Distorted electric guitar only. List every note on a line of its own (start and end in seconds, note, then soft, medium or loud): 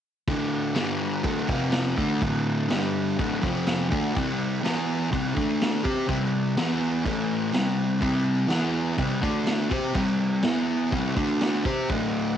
0.28 0.75 D2 medium
0.28 0.75 A2 medium
0.28 0.75 D3 loud
0.75 1.23 G2 medium
0.75 1.23 D3 medium
0.75 1.24 G3 loud
1.23 1.47 D2 medium
1.23 1.47 A2 loud
1.23 1.48 D3 loud
1.48 1.96 F2 medium
1.48 1.97 C3 loud
1.48 1.97 F3 loud
1.97 2.21 D3 medium
1.97 2.21 A3 medium
1.97 2.21 D4 medium
2.22 2.68 D2 medium
2.22 2.70 A2 loud
2.22 2.69 D3 loud
2.69 3.17 G2 medium
2.69 3.18 D3 medium
2.69 3.18 G3 medium
3.18 3.41 D2 loud
3.18 3.42 A2 medium
3.18 3.43 D3 loud
3.42 3.90 F2 loud
3.42 3.89 C3 medium
3.42 3.90 F3 loud
3.89 4.13 D3 medium
3.89 4.14 A3 loud
3.89 4.14 D4 loud
4.13 4.62 C3 loud
4.13 4.61 G3 loud
4.13 4.63 C4 loud
4.62 5.10 E3 loud
4.62 5.11 B3 medium
4.62 5.11 E4 loud
5.10 5.34 C3 loud
5.10 5.34 G3 loud
5.10 5.35 C4 loud
5.35 5.83 D3 medium
5.35 5.83 A3 loud
5.35 5.84 D4 loud
5.84 6.08 C4 medium
5.84 6.08 G4 medium
5.84 6.08 C5 loud
6.08 6.56 C3 loud
6.08 6.57 G3 medium
6.08 6.57 C4 loud
6.57 7.04 E3 medium
6.57 7.05 B3 loud
6.57 7.05 E4 loud
7.05 7.52 A2 loud
7.05 7.53 E3 loud
7.05 7.54 A3 loud
7.52 7.98 C3 loud
7.52 8.00 G3 medium
7.52 8.01 C4 loud
8.00 8.49 C3 medium
8.00 8.47 G3 loud
8.00 8.49 C4 loud
8.48 8.97 E3 medium
8.48 8.98 B3 medium
8.48 8.98 E4 loud
8.97 9.22 C3 loud
8.97 9.21 G3 medium
8.97 9.21 C4 loud
9.21 9.70 D3 medium
9.21 9.69 A3 medium
9.21 9.71 D4 medium
9.70 9.94 C4 medium
9.70 9.95 G4 loud
9.70 9.96 C5 loud
9.93 10.42 C3 loud
9.93 10.43 G3 loud
9.93 10.44 C4 loud
10.44 10.92 E3 medium
10.44 10.92 B3 loud
10.44 10.93 E4 medium
10.91 11.16 C3 medium
10.91 11.15 G3 loud
10.91 11.16 C4 loud
11.16 11.64 D3 medium
11.16 11.64 A3 loud
11.16 11.65 D4 medium
11.65 11.89 C4 medium
11.65 11.89 G4 medium
11.65 11.90 C5 loud
11.89 12.36 D2 medium
11.89 12.37 A2 loud
11.89 12.37 D3 loud